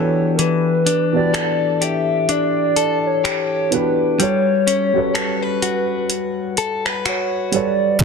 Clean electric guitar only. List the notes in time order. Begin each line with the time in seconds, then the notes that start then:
Already playing: E3 G4 B4
0.39 E3
0.86 D4
1.34 A4
1.81 G4
2.29 D4
2.76 A4
3.24 G4
4.20 G3
4.67 C#4
5.15 A4
5.43 B4
5.62 F#4
6.58 A4
6.85 B4
7.06 F#4
8.01 E3